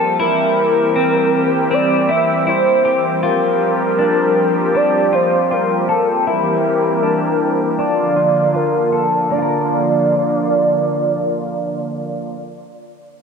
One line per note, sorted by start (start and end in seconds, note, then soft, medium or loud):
0.00 0.16 F3 medium
0.00 0.16 G3 medium
0.00 6.22 A#3 medium
0.00 7.75 C4 medium
0.00 0.15 G4 medium
0.00 0.19 A4 medium
0.20 3.20 E3 medium
0.20 3.20 G3 medium
0.20 0.95 E4 medium
0.20 3.20 G4 medium
0.20 1.75 A#4 medium
0.96 1.70 C4 medium
1.71 2.09 C4 medium
1.71 2.12 D5 loud
2.09 2.46 E4 medium
2.09 2.50 E5 medium
2.47 2.85 E4 medium
2.47 3.05 C5 medium
2.85 3.22 G4 medium
3.22 6.24 F3 medium
3.22 6.23 G3 medium
3.22 3.99 F4 medium
3.22 6.23 G4 medium
3.22 4.78 A#4 medium
3.99 4.73 D4 medium
4.75 5.13 D4 medium
4.75 5.16 D5 medium
5.13 5.50 F4 medium
5.13 5.54 C5 medium
5.51 5.88 F4 medium
5.51 6.09 A#4 medium
5.89 6.27 A4 medium
6.27 7.77 E3 medium
6.27 7.77 G3 medium
6.27 7.77 A#3 medium
6.27 7.03 E4 medium
6.27 7.77 G4 medium
6.27 7.81 A#4 medium
7.03 7.77 D4 medium
7.79 9.29 D3 medium
7.79 9.29 F3 medium
7.79 9.29 A#3 medium
7.79 8.17 D4 medium
7.79 9.29 F4 medium
7.79 8.57 D5 medium
8.16 8.53 F4 medium
8.54 8.92 F4 medium
8.54 9.12 A#4 medium
8.93 9.30 A4 medium
9.30 12.34 D3 medium
9.30 12.35 F3 medium
9.30 12.34 A#3 medium
9.30 12.35 A#3 medium
9.30 12.35 F4 medium
9.30 12.36 D5 medium
9.34 12.39 D4 medium
9.34 9.42 F4 medium
9.42 12.47 A#4 medium